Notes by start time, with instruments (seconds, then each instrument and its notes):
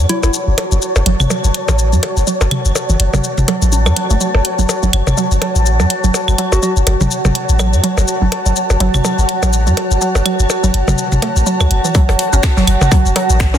Already playing: ambient pad F#4 C#5 F#5 A5, synth texture C#5
0.09 synth arpeggio sound F#3, soft synth lead E4, closed hi-hat
0.23 sub bass F#1, soft synth lead E4, percussion blips, shaker
0.34 shaker
0.47 sub bass F#1, synth arpeggio sound E3
0.58 closed hi-hat, percussion blips
0.72 sub bass F#1, synth arpeggio sound F#3, shaker
0.82 shaker
0.96 sub bass F#1, percussion blips, shaker
1.06 sub bass F#1, synth arpeggio sound F#3, closed hi-hat
1.20 sub bass F#1, mid tom, claves, shaker
1.30 synth arpeggio sound F#3, percussion blips, shaker
1.44 sub bass F#1, shaker
1.54 closed hi-hat
1.68 sub bass A1, synth arpeggio sound E3, percussion blips, shaker
1.79 shaker
1.93 sub bass F#2, synth arpeggio sound F#3, shaker
2.03 closed hi-hat, percussion blips
2.17 sub bass F#1, shaker
2.27 synth arpeggio sound F#3, shaker
2.41 sub bass F#1, percussion blips, shaker
2.51 synth arpeggio sound F#3, closed hi-hat, mid tom, claves
2.65 sub bass F#1, shaker
2.75 percussion blips, shaker
2.89 sub bass F#1, synth arpeggio sound E3, shaker
3.00 sub bass F#1, closed hi-hat
3.14 sub bass F#1, synth arpeggio sound F#3, mid tom, percussion blips, shaker
3.24 shaker
3.38 sub bass F#1, mid tom, shaker
3.48 synth arpeggio sound F#3, closed hi-hat, percussion blips
3.62 sub bass A1, synth arpeggio sound F#3, shaker
3.72 synth arpeggio sound C#4, shaker
3.86 sub bass F#2, synth arpeggio sound F#3, percussion blips, claves, shaker
3.96 synth arpeggio sound F#3, closed hi-hat
4.10 sub bass F#1, synth arpeggio sound A3, shaker
4.21 synth arpeggio sound F#3, shaker
4.35 sub bass F#1, percussion blips
4.45 closed hi-hat
4.59 sub bass F#1, synth arpeggio sound F#3, shaker
4.69 percussion blips, shaker
4.83 sub bass F#1, synth arpeggio sound F#3, shaker
4.93 sub bass F#1, closed hi-hat, claves
5.07 sub bass F#1, mid tom, percussion blips, shaker
5.17 synth arpeggio sound F#3, shaker
5.31 sub bass F#1, shaker
5.42 synth arpeggio sound F#3, closed hi-hat, percussion blips
5.56 sub bass A1, shaker
5.66 shaker
5.80 sub bass F#2, synth arpeggio sound F#3, percussion blips, shaker
5.90 closed hi-hat
6.04 sub bass F#1, synth arpeggio sound F#3, shaker
6.14 percussion blips, shaker
6.28 sub bass F#1, claves, shaker
6.38 synth arpeggio sound F#3, closed hi-hat
6.52 sub bass F#1, soft synth lead F#4, percussion blips, shaker
6.63 synth arpeggio sound F#3, soft synth lead F#4, shaker
6.77 sub bass F#1, shaker
6.87 sub bass F#1, closed hi-hat, percussion blips
7.01 sub bass F#1, synth arpeggio sound F#3, mid tom, shaker
7.11 shaker
7.25 sub bass F#1, synth arpeggio sound F#3, mid tom, percussion blips, shaker
7.35 closed hi-hat
7.49 sub bass A1, shaker
7.59 synth arpeggio sound F#3, percussion blips, claves, shaker
7.73 sub bass F#2, shaker
7.84 synth arpeggio sound F#3, closed hi-hat
7.97 sub bass F#1, percussion blips, shaker
8.08 shaker
8.22 sub bass F#1, synth arpeggio sound F#3
8.32 closed hi-hat, percussion blips
8.46 sub bass F#1, synth arpeggio sound F#3, shaker
8.56 shaker
8.70 sub bass F#1, percussion blips, shaker
8.80 sub bass F#1, synth arpeggio sound F#3, closed hi-hat
8.94 sub bass F#1, mid tom, claves, shaker
9.05 synth arpeggio sound F#3, percussion blips, shaker
9.18 sub bass F#1, shaker
9.29 closed hi-hat
9.43 sub bass A1, synth arpeggio sound F#3, percussion blips, shaker
9.53 shaker
9.67 sub bass F#2, synth arpeggio sound F#3, shaker
9.77 closed hi-hat, percussion blips
9.91 sub bass F#1, shaker
10.01 synth arpeggio sound F#3, shaker
10.15 sub bass F#1, percussion blips, shaker
10.26 synth arpeggio sound F#3, closed hi-hat, claves
10.39 sub bass F#1, shaker
10.50 percussion blips, shaker
10.64 sub bass F#1, synth arpeggio sound F#3, shaker
10.74 sub bass F#1, closed hi-hat
10.88 sub bass F#1, synth arpeggio sound F#3, mid tom, percussion blips, shaker
10.98 shaker
11.12 sub bass F#1, mid tom, shaker
11.22 synth arpeggio sound A3, closed hi-hat, percussion blips
11.36 sub bass A1, shaker
11.46 synth arpeggio sound F#3, shaker
11.60 sub bass C#2, percussion blips, claves, shaker
11.71 sub bass F#1, closed hi-hat
11.85 synth arpeggio sound E3, shaker
11.94 synth arpeggio sound F#3, kick, closed hi-hat, shaker
12.09 sub bass F#1, closed hi-hat, percussion blips
12.19 closed hi-hat
12.33 sub bass F#1, synth arpeggio sound C#4, shaker
12.43 finger snap, kick, snare, closed hi-hat, percussion blips, shaker
12.57 sub bass F#1, synth arpeggio sound F#3, snare, shaker
12.67 sub bass F#1, closed hi-hat, claves
12.81 sub bass F#1, mid tom, percussion blips, shaker
12.92 synth arpeggio sound F#3, kick, closed hi-hat, shaker
13.06 sub bass F#1, shaker
13.16 synth arpeggio sound F#3, closed hi-hat, percussion blips
13.30 sub bass A1, shaker
13.40 finger snap, kick, snare, closed hi-hat, shaker
13.54 sub bass F#2, synth arpeggio sound C#4, percussion blips, shaker